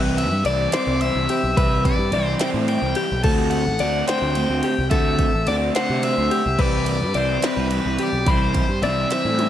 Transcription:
Already playing: C2 E3 G3 C4 E4 B4
0.18 E5, ride
0.31 G2
0.45 C2 E3 G3 C4 E4 D5, ride
0.72 E3 G3 C4 E4 C5 D5, snare, ride
0.87 C2
1.01 E3 G3 C4 E4 E5, ride
1.16 C2
1.29 G4, ride
1.44 B1
1.57 C2 E3 G3 C4 E4 B4 E5, kick, ride
1.85 D5, kick, ride
1.98 G2
2.12 C2 E3 G3 C4 E4 D5, ride
2.25 C5
2.39 E3 G3 C4 E4 C5 G5, snare, ride
2.54 A2
2.68 E3 G3 C4 E4 G5, ride
2.82 C2
2.95 G4, ride
3.12 B1
3.24 D2 D3 A3 C4 F#4 A4 A5, kick, crash
3.50 F#5, ride
3.66 A1
3.79 D2 D3 A3 C4 F#4 D5, ride
4.07 D3 A3 C4 F#4 C5 G5, snare, ride
4.22 D2
4.35 D3 A3 C4 F#4, ride
4.50 D2
4.63 G4, ride
4.79 C2
4.90 D2 D3 A3 C4 F#4 A4 E5, kick, ride
5.19 kick, ride
5.34 A1
5.47 D2 D3 A3 C4 F#4 D5, ride
5.75 D3 A3 C4 F#4 C5 F#5, snare, ride
5.90 C3
6.03 D3 A3 C4 F#4 E5, ride
6.18 D2
6.31 G4, ride
6.46 C2
6.58 C2 E3 G3 C4 E4 B4 D5, kick, crash
6.86 D5, ride
7.01 G2
7.14 C2 E3 G3 C4 E4 C5 D5, ride
7.42 E3 G3 C4 E4 B4, snare, ride
7.57 C2
7.71 E3 G3 C4 E4, ride
7.86 C2
7.99 G4, ride
8.03 D5
8.13 B1
8.26 C2 E3 G3 C4 E4 C5 B5, kick, ride
8.54 kick, ride
8.69 G2
8.82 C2 E3 G3 C4 E4 D5 E5, ride
9.10 E3 G3 C4 E4 C5 E5, snare, ride
9.25 A2
9.39 E3 G3 C4 E4, high tom, ride

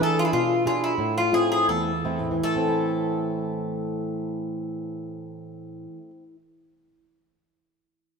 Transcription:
Already playing: E3
0.01 D4 G#4 A4 E5
0.19 F4
0.25 E4
0.33 B2 F4
0.66 D4 E4 F4 G#4
0.84 E4
0.98 A2
1.18 F4
1.33 A3 C4 E4 G#4
1.52 G#4
1.68 E2 A4
2.05 A3 C4 E4
2.19 A2
2.31 E3
2.44 A3 A4
2.56 C4
2.69 E4

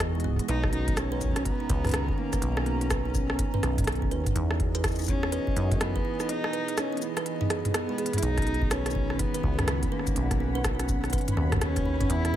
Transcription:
Already playing: E2 B2 E3 F#4 G#4 D#5
0.00 E4, cross-stick, closed hi-hat
0.15 G#3
0.20 closed hi-hat
0.24 G#2 B3, kick
0.27 kick
0.30 kick
0.33 kick
0.36 G#3, kick, closed hi-hat
0.48 B1 D#3 D#4 B4, closed hi-hat
0.64 kick, cross-stick
0.73 C#4 D#4, closed hi-hat
0.85 B3 A#5, kick, closed hi-hat
0.97 C#4 D#4, cross-stick, closed hi-hat, cabasa
1.12 B4
1.18 C#4 D#4, kick, closed hi-hat, cabasa
1.25 kick
1.29 kick
1.32 C#4, kick, cross-stick, closed hi-hat
1.45 B3, kick, closed hi-hat
1.60 D#4
1.69 C#2 B4, kick, closed hi-hat
1.84 D#4, cross-stick, closed hi-hat, mid tom
1.87 closed hi-hat
1.89 closed hi-hat
1.91 C#4, cross-stick, closed hi-hat
1.94 closed hi-hat
2.09 B3, kick
2.18 A#3 D#4
2.33 B4, kick, cross-stick, closed hi-hat, cabasa
2.42 B1 D#4, closed hi-hat
2.57 C#4, cross-stick
2.66 B3, closed hi-hat
2.81 D#4, closed hi-hat
2.90 B4, kick, cross-stick, closed hi-hat, cabasa
3.05 D#4
3.15 C#4, kick, cabasa
3.30 B3, cross-stick
3.39 D#4, kick, closed hi-hat
3.54 B4, mid tom
3.63 B1 D#4, cross-stick, closed hi-hat
3.78 C#4, kick, closed hi-hat, mid tom
3.84 B3, cross-stick, closed hi-hat
3.87 closed hi-hat
3.92 closed hi-hat
3.95 closed hi-hat
4.02 D#4, kick
4.11 D#2 B4, closed hi-hat
4.26 D#4, kick, closed hi-hat, mid tom
4.35 E2 E3 D#4, closed hi-hat
4.48 B3 D#5, cross-stick
4.60 E4, kick, closed hi-hat
4.64 G#4
4.75 B4, closed hi-hat
4.84 E4, kick, cross-stick, closed hi-hat, cabasa
4.88 cabasa
4.91 cabasa
4.95 D#4, cabasa
4.99 cabasa
5.01 cabasa
5.04 cabasa
5.06 B3, kick, closed hi-hat, cabasa
5.08 C#4, cabasa
5.23 E4, cross-stick
5.32 B4, closed hi-hat
5.47 E4, kick
5.56 F#2 D#4, closed hi-hat
5.71 B3, kick, closed hi-hat, mid tom
5.81 B3 E4, cross-stick, closed hi-hat
5.96 B4, kick
6.05 E4
6.20 D#4, cross-stick, cabasa
6.29 B3 D#4, closed hi-hat
6.44 E4, cross-stick
6.53 B4, closed hi-hat
6.68 E4, closed hi-hat
6.77 C#4 D#4, cross-stick, closed hi-hat, cabasa
6.93 B3
6.97 closed hi-hat
7.02 B3 E4, cabasa
7.17 B4, cross-stick, closed hi-hat
7.26 E4, closed hi-hat
7.41 D#4, mid tom
7.50 G#4, cross-stick, closed hi-hat
7.65 E4, closed hi-hat, mid tom
7.74 B3, cross-stick, closed hi-hat
7.89 G#3
7.98 G#4, closed hi-hat
8.06 closed hi-hat
8.13 G#3 E4, closed hi-hat, mid tom
8.18 closed hi-hat
8.22 B1 D#3 C#4 D#4 B5, closed hi-hat
8.38 C#4, kick, cross-stick, closed hi-hat
8.42 B2, closed hi-hat
8.47 B3, closed hi-hat
8.54 C#4, closed hi-hat
8.62 D#4, kick
8.71 C#4 B4, cross-stick, closed hi-hat, cabasa
8.86 D#4, cross-stick, closed hi-hat
8.90 F#4, cabasa
8.95 C#4, kick
9.10 B3, cross-stick
9.19 B3 D#4, kick, closed hi-hat
9.34 B4, closed hi-hat
9.44 C#2 D#4, kick
9.55 C#4 F#5, cross-stick, closed hi-hat, mid tom
9.68 B3, cross-stick, closed hi-hat
9.83 D#4, kick, closed hi-hat
9.92 A#3 B4
9.99 cross-stick
10.07 D#4, kick, closed hi-hat, cabasa
10.16 B1 C#4, closed hi-hat
10.31 B3, kick, cross-stick, closed hi-hat
10.40 D#4
10.55 B4
10.64 kick, cross-stick, closed hi-hat, cabasa
10.79 C#4, cross-stick, closed hi-hat
10.89 B3, kick, cabasa
11.04 D#4, cross-stick, closed hi-hat
11.10 B4, kick, closed hi-hat
11.13 closed hi-hat
11.18 closed hi-hat
11.21 closed hi-hat
11.28 D#4, closed hi-hat, mid tom
11.37 D#2 C#4, cross-stick
11.52 B3, kick, cross-stick, closed hi-hat, mid tom
11.54 kick
11.56 kick
11.58 kick
11.60 C#4 D#4, kick, cross-stick, closed hi-hat
11.76 B4, kick, cross-stick, closed hi-hat
11.79 kick
11.81 kick
11.83 D#4, kick
11.86 kick
11.89 kick
11.93 kick
11.97 C#4, kick
12.01 kick, closed hi-hat, mid tom
12.10 E2 E3 B3 E4, closed hi-hat
12.25 E4, cross-stick, closed hi-hat

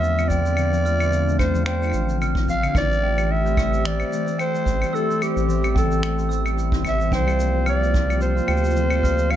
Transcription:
Already playing: E2 D3 F3 A3 C4 F4 E5
0.02 D4, shaker
0.18 C4, claves, shaker
0.28 F3 D5 G5, kick, shaker
0.46 F3, shaker
0.57 D3 D4, claves, shaker
0.73 F3, shaker
0.85 A3 F6, shaker
1.00 C4, claves, shaker
1.12 A3, shaker
1.27 F3, shaker
1.39 D3 C5, kick, claves, shaker
1.54 F3, shaker
1.65 D4 C5 G5, finger snap, shaker
1.82 C4, claves, shaker
1.83 claves
1.88 claves
1.90 claves
1.92 A1 F4, claves, shaker
2.09 D3, shaker
2.21 D3 F6, claves, shaker
2.35 D3, kick, shaker
2.48 F3 F5, kick, shaker
2.63 D3, claves, shaker
2.75 A1 A3 G4 C5 D5, kick, claves, shaker
2.90 G3, shaker
3.02 E3 G5
3.17 G3, claves, shaker
3.30 E4 E5
3.45 C4, shaker
3.57 G3 E6, kick, claves, shaker
3.72 G3, shaker
3.84 E3 D5, finger snap, shaker
4.00 G3, claves, shaker
4.12 A3, shaker
4.27 C4, shaker
4.39 A3 C5 G5, claves, shaker
4.55 G3, shaker
4.66 A1 E3, kick, shaker
4.82 G3, claves, shaker
4.93 E4 A4 E6, shaker
5.09 C4, shaker
5.21 G3 G4, claves, shaker
5.36 A1 G3, shaker
5.48 E3, shaker
5.64 G3, claves, shaker
5.75 A3 A4 G5, kick, shaker
5.90 C4, shaker
6.02 A3, finger snap, claves, shaker
6.18 G3, shaker
6.29 E3 E6, shaker
6.45 G3, claves, shaker
6.57 E4, shaker
6.72 C4, kick, shaker
6.84 G3, kick, claves, shaker
6.88 E5
6.99 G3, shaker
7.11 C2 C3 F3 A#3 F4 C5 G5, kick, shaker
7.26 G3, claves, shaker
7.38 A#3, shaker
7.53 C4
7.65 A#3 D5 F6, claves, shaker
7.81 G3, shaker
7.93 F3, kick, shaker
8.08 G3, claves, shaker
8.20 F4 C5, shaker
8.36 C4, shaker
8.48 D2 G3 G5, claves, shaker
8.57 shaker
8.63 G3, shaker
8.70 shaker
8.76 F3, shaker
8.90 G3, claves, shaker
9.02 A#3 F6, kick, shaker
9.17 C4, shaker
9.29 A#3 F5, claves, shaker

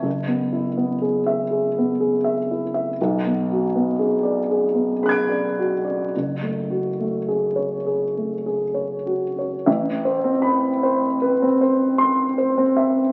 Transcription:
0.02 F#1
0.27 B3
0.53 E4
0.77 B3
1.02 G#4
1.26 E5
1.51 G#4
1.78 B3
2.00 G#4
2.24 E5
2.51 E4
2.74 E5
3.01 B1
3.26 B3
3.51 F#4
3.75 B3
3.99 G#4
4.23 D5
4.51 G#4
4.75 B3
5.03 G#4 B5 F#6
5.09 G#6 D7
5.29 D5
5.59 F#4
5.85 D5
6.16 F#1
6.42 A3
6.70 F#4
7.00 A3
7.28 G#4
7.56 C#5
7.86 G#4
8.17 A3
8.46 G#4
8.74 C#5
9.06 F#4
9.39 C#5
9.66 A1 E5
10.05 C5
10.24 C4
10.42 B5
10.83 C5
11.22 B4
11.42 C4
11.61 C5
11.98 C6
12.38 C5
12.58 C4
12.77 E5

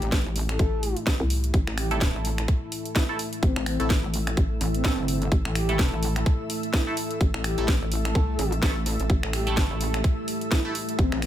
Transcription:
Already playing: A3 E4 G4
0.02 A1, closed hi-hat
0.12 kick, snare, closed hi-hat
0.26 A1
0.36 open hi-hat
0.49 A4, finger snap, closed hi-hat
0.59 A1, kick, closed hi-hat
0.83 open hi-hat
0.97 closed hi-hat
1.07 kick, snare, closed hi-hat
1.20 C2
1.30 open hi-hat
1.44 closed hi-hat
1.54 A1 A3 A4, kick, closed hi-hat
1.67 A1 E5, finger snap
1.72 A4
1.77 G4, finger snap, open hi-hat
1.91 A3 E4 A4, closed hi-hat
2.01 kick, snare, closed hi-hat
2.15 A1
2.25 open hi-hat
2.38 finger snap, closed hi-hat
2.48 kick, closed hi-hat
2.72 open hi-hat
2.77 E6
2.85 closed hi-hat
2.95 E4, kick, snare, closed hi-hat
3.09 A3 E4 A4
3.19 open hi-hat
3.33 closed hi-hat
3.43 A1 C4, kick, closed hi-hat
3.56 A1, finger snap
3.66 C4, finger snap, open hi-hat
3.80 A1 A3 E4 A4, closed hi-hat
3.90 kick, snare, closed hi-hat
4.03 A1
4.14 open hi-hat
4.27 finger snap, closed hi-hat
4.37 A1, kick, closed hi-hat
4.61 A1, open hi-hat
4.74 C4, closed hi-hat
4.84 A3 E4 A4, kick, snare, closed hi-hat
4.98 G1
5.08 open hi-hat
5.22 closed hi-hat
5.32 A1, kick, closed hi-hat
5.45 A1, finger snap
5.55 G4, finger snap, open hi-hat
5.69 A3 E4 A4, closed hi-hat
5.79 kick, snare, closed hi-hat
5.92 A1
6.03 open hi-hat
6.16 finger snap, closed hi-hat
6.26 kick, closed hi-hat
6.50 open hi-hat
6.63 closed hi-hat
6.73 E4, kick, snare, closed hi-hat
6.87 A3 E4 A4
6.97 open hi-hat
7.11 closed hi-hat
7.21 A1, kick, closed hi-hat
7.34 A1, finger snap
7.44 G4, finger snap, open hi-hat
7.58 A1 A3 E4 A4, closed hi-hat
7.68 kick, snare, closed hi-hat
7.81 A1
7.92 open hi-hat
8.05 A4, finger snap, closed hi-hat
8.15 C2, kick, closed hi-hat
8.39 A1, open hi-hat
8.52 closed hi-hat
8.62 A1 A3 E4 A4, kick, snare, closed hi-hat
8.86 open hi-hat
9.00 A1, closed hi-hat
9.10 A1 G4, kick, closed hi-hat
9.23 A1, finger snap
9.33 G4, finger snap, open hi-hat
9.47 A3 E4 A4, closed hi-hat
9.57 kick, snare, closed hi-hat
9.70 A1
9.81 open hi-hat
9.94 finger snap, closed hi-hat
10.04 kick, closed hi-hat
10.28 open hi-hat
10.41 closed hi-hat
10.51 E4, kick, snare, closed hi-hat
10.65 A3 E4 A4
10.75 open hi-hat
10.89 closed hi-hat
10.99 A1 C4, kick, closed hi-hat
11.12 A1, finger snap
11.22 C4, finger snap, open hi-hat

